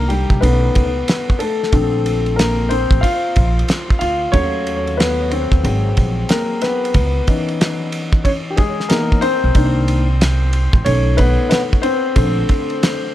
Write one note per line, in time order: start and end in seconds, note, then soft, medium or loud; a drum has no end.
0.00 0.27 C2 medium
0.00 0.38 D#3 medium
0.00 0.39 D4 medium
0.08 0.40 G3 medium
0.08 0.39 G4 medium
0.08 ride medium
0.30 0.39 C2 medium
0.30 kick loud
0.41 0.67 B1 loud
0.41 0.89 D#3 soft
0.41 0.89 A3 soft
0.41 1.36 B3 medium
0.41 0.89 C#4 soft
0.41 1.42 B4 medium
0.41 ride medium
0.75 1.00 C#2 medium
0.75 kick medium
0.75 ride medium
1.08 snare loud
1.08 hi-hat pedal medium
1.08 ride medium
1.30 kick medium
1.39 2.35 A3 medium
1.39 2.40 A4 medium
1.39 ride medium
1.63 snare soft
1.72 2.88 A#1 medium
1.72 2.66 D3 medium
1.72 2.67 F3 medium
1.72 2.67 C4 medium
1.72 kick loud
1.72 ride medium
2.06 ride medium
2.26 ride soft
2.36 2.68 A#3 medium
2.36 2.71 A#4 medium
2.36 snare loud
2.36 hi-hat pedal soft
2.36 ride medium
2.69 3.01 C4 medium
2.69 3.03 C5 medium
2.69 ride medium
2.91 3.00 A1 medium
2.91 kick loud
2.91 ride soft
3.01 3.97 F4 medium
3.01 3.97 F5 medium
3.01 kick medium
3.01 ride medium
3.36 3.61 A#1 medium
3.36 kick medium
3.36 ride medium
3.59 ride soft
3.68 snare loud
3.68 hi-hat pedal soft
3.68 ride medium
3.90 kick loud
3.99 4.26 D2 medium
3.99 4.32 F4 medium
3.99 4.30 F5 medium
3.99 ride medium
4.32 5.49 D#2 loud
4.32 5.60 F#3 medium
4.32 5.60 A3 medium
4.32 4.95 C#4 medium
4.32 5.00 C#5 loud
4.32 kick medium
4.32 ride medium
4.67 ride medium
4.87 ride soft
4.97 5.30 B3 medium
4.97 5.28 B4 medium
4.97 snare loud
4.97 hi-hat pedal medium
4.97 ride medium
5.30 5.63 C4 medium
5.30 6.57 C5 medium
5.30 ride medium
5.52 5.61 D#2 medium
5.52 kick loud
5.52 ride soft
5.63 5.89 G#1 loud
5.63 6.90 F#3 medium
5.63 6.91 G#3 soft
5.63 6.91 C4 medium
5.63 ride medium
5.97 6.22 A#1 medium
5.97 kick medium
5.97 ride medium
6.29 6.60 A#3 medium
6.29 6.60 A#4 medium
6.29 snare loud
6.29 hi-hat pedal soft
6.29 ride medium
6.61 8.22 B3 medium
6.61 8.30 B4 medium
6.61 snare soft
6.61 ride medium
6.85 ride soft
6.94 7.19 C#2 loud
6.94 kick loud
6.94 ride medium
7.27 8.88 E3 medium
7.27 8.24 C#4 soft
7.27 8.89 D#4 medium
7.27 kick medium
7.27 ride medium
7.48 ride soft
7.61 snare loud
7.61 hi-hat pedal soft
7.61 ride medium
7.92 ride medium
8.13 kick loud
8.24 8.32 C#4 medium
8.24 8.30 C#5 medium
8.24 kick medium
8.24 ride medium
8.50 8.56 G4 medium
8.57 8.88 G#3 medium
8.57 8.91 G#4 medium
8.57 kick medium
8.57 ride medium
8.80 snare soft
8.89 9.19 E3 soft
8.89 9.21 A#3 medium
8.89 9.19 B3 soft
8.89 9.20 D#4 medium
8.89 9.23 A#4 medium
8.89 snare loud
8.89 hi-hat pedal soft
8.89 ride medium
9.12 kick medium
9.21 10.82 C4 medium
9.21 10.81 C5 loud
9.21 ride medium
9.44 9.53 B1 medium
9.54 10.70 C2 medium
9.54 10.02 D#3 medium
9.54 10.02 A#3 medium
9.54 10.03 D4 medium
9.54 kick medium
9.54 ride medium
9.88 ride medium
10.21 snare loud
10.21 hi-hat pedal medium
10.21 ride medium
10.53 ride medium
10.73 10.82 A1 medium
10.73 kick loud
10.85 11.35 B1 loud
10.85 11.79 D#3 medium
10.85 11.80 A3 soft
10.85 11.16 C#4 medium
10.85 11.19 C#5 medium
10.85 ride medium
11.17 11.49 B3 medium
11.17 11.48 B4 medium
11.17 kick medium
11.17 ride medium
11.49 11.59 B3 medium
11.49 11.57 B4 medium
11.49 snare loud
11.49 hi-hat pedal soft
11.49 ride medium
11.73 kick medium
11.82 12.15 C4 medium
11.82 13.14 C5 medium
11.82 ride medium
12.15 12.41 A#1 loud
12.15 13.14 D3 medium
12.15 13.14 A3 medium
12.15 13.14 C4 medium
12.15 kick medium
12.15 ride medium
12.49 kick medium
12.49 ride medium
12.70 ride soft
12.83 snare loud
12.83 hi-hat pedal medium
12.83 ride medium